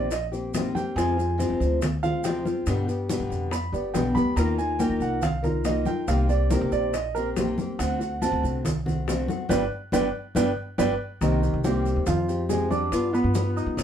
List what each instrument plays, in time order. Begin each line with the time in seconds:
Already playing: upright bass A#1, grand piano D5
0.10 grand piano D#5, muted nylon-string guitar stroke, high bongo, high conga, maracas
0.32 nylon-string guitar A#3 C4 G4, high bongo, high conga, maracas
0.53 nylon-string guitar C3 D#3 A#3 C4 G4, high bongo, low bongo, high conga, maracas
0.75 nylon-string guitar A#3 C4 G4, grand piano G5, high bongo, high conga, maracas
0.96 upright bass F2, nylon-string guitar C3 F3 G#3 C4 F4, grand piano G#5, high bongo, high conga, maracas
1.18 nylon-string guitar G#3 C4 F4, high bongo, high conga, maracas
1.38 nylon-string guitar C3 F3 G#3 C4 F4, high bongo, high conga, maracas
1.50 upright bass F2
1.60 upright bass D2, high bongo, maracas
1.81 muted nylon-string guitar stroke, high bongo, high conga, low conga, maracas
2.03 nylon-string guitar G#3 C4 F4, grand piano F5, high bongo, high conga, low conga, maracas
2.24 nylon-string guitar C3 F3 G#3 C4 F4, grand piano G5, high bongo, low bongo, high conga, maracas
2.45 nylon-string guitar G#3 C4 F4, high conga, maracas
2.66 upright bass G2, nylon-string guitar B2 D3 G3 B3 G4, high bongo, high conga, maracas
2.88 nylon-string guitar G3 B3 G4, high conga, maracas
3.09 nylon-string guitar B2 D3 G3 B3 G4, high bongo, high conga, maracas
3.20 upright bass G2
3.30 upright bass F2, high bongo, maracas
3.51 grand piano B5, muted nylon-string guitar stroke, high bongo, high conga, maracas
3.72 upright bass G1, nylon-string guitar G3 B3 G4, grand piano D5, high bongo, high conga, maracas
3.94 upright bass B1, nylon-string guitar B2 D3 G3 B3 G4, grand piano G5, high bongo, low bongo, high conga, maracas
4.15 upright bass D2, nylon-string guitar G3 B3 G4, grand piano B5, high bongo, high conga, maracas
4.36 upright bass D#2, nylon-string guitar D#3 A#3 D#4 F4 A#4, grand piano A#5, high bongo, high conga, maracas
4.58 nylon-string guitar D#4 F4 A#4, grand piano G#5, high bongo, high conga, maracas
4.79 nylon-string guitar D#3 A#3 D#4 F4 A#4, grand piano G5, high bongo, high conga, maracas
4.89 upright bass D#2
5.00 upright bass C2, grand piano F#5, high bongo, maracas
5.22 grand piano F5, muted nylon-string guitar stroke, high bongo, high conga, low conga, maracas
5.43 nylon-string guitar D#4 F4 A#4, grand piano A#4, high bongo, high conga, low conga, maracas
5.64 nylon-string guitar D#3 A#3 D#4 F4 A#4, grand piano D#5, high bongo, low bongo, high conga, maracas
5.85 nylon-string guitar D#4 F4 A#4, grand piano G5, high conga, maracas
6.07 upright bass C2, nylon-string guitar C3 D#3 A#3 C4 G4, grand piano F5, high bongo, high conga, maracas
6.29 nylon-string guitar A#3 C4 G4, grand piano D5, high conga, maracas
6.50 nylon-string guitar C3 D#3 A#3 C4 G4, grand piano A#4, high bongo, high conga, maracas
6.61 upright bass C2
6.72 upright bass A#1, grand piano D5, high bongo, maracas
6.93 grand piano D#5, muted nylon-string guitar stroke, high bongo, high conga, maracas
7.15 nylon-string guitar A#3 C4 G4, grand piano A#4, high bongo, high conga, maracas
7.37 nylon-string guitar C3 D#3 A#3 C4 G4, high bongo, low bongo, high conga, maracas
7.58 nylon-string guitar A#3 C4 G4, high bongo, high conga, maracas
7.79 upright bass D2, nylon-string guitar D3 A3 C4 F#4, grand piano F#5, high bongo, high conga, maracas
8.00 nylon-string guitar A3 C4 F#4, high bongo, high conga, maracas
8.22 nylon-string guitar D3 A3 C4 F#4, grand piano A5, high bongo, high conga, maracas
8.32 upright bass D2
8.43 upright bass C2, high bongo, maracas
8.65 muted nylon-string guitar stroke, high bongo, high conga, low conga, maracas
8.86 nylon-string guitar A3 C4 F#4, high bongo, high conga, low conga, maracas
9.07 nylon-string guitar D3 A3 C4 F#4, high bongo, low bongo, high conga, maracas
9.28 nylon-string guitar A3 C4 F#4, high conga, maracas
9.49 upright bass G1, nylon-string guitar G3 B3 D4, grand piano B4 D5 G5, high bongo, high conga, maracas
9.92 upright bass G1, nylon-string guitar G3 B3 D4, grand piano B4 D5 G5, high bongo, high conga, maracas
10.35 upright bass G1, nylon-string guitar G3 B3 D4, grand piano B4 D5 G5, high bongo, high conga, maracas
10.78 upright bass G1, nylon-string guitar G3 B3 D4, grand piano B4 D5 G5, high bongo, high conga, maracas
11.21 upright bass C2, nylon-string guitar C3 D#3 A#3 C4 G4, grand piano D#3 D#4 D#5, high bongo, high conga, maracas
11.43 nylon-string guitar A#3 C4 G4, high bongo, high conga, maracas
11.54 upright bass C2
11.64 nylon-string guitar C3 D#3 A#3 C4 G4, grand piano G3 G4 G5, high bongo, high conga, maracas
11.85 high bongo, high conga, maracas
11.96 upright bass D#2
12.06 upright bass F2, grand piano F3 F4 F5, muted nylon-string guitar stroke, high bongo, high conga, low conga, maracas
12.28 nylon-string guitar G#3 C4 G4, high bongo, high conga, maracas
12.49 nylon-string guitar C3 F3 G#3 C4 G4, grand piano G#3 G#4 G#5, high bongo, low bongo, high conga, maracas
12.70 nylon-string guitar G#3 C4 G4, grand piano D4 D5 D6, high conga, maracas
12.92 upright bass G2, nylon-string guitar G3 B3 F4, high bongo, high conga, maracas
13.13 grand piano B3 B4 B5, nylon-string guitar B3 F4, high bongo, high conga, maracas
13.24 upright bass G2
13.33 nylon-string guitar G3 B3 F4, high bongo, high conga, maracas
13.56 grand piano D#4 D#5 D#6, high bongo, high conga, maracas
13.66 upright bass G3
13.77 upright bass C2, muted nylon-string guitar stroke, high bongo, high conga, maracas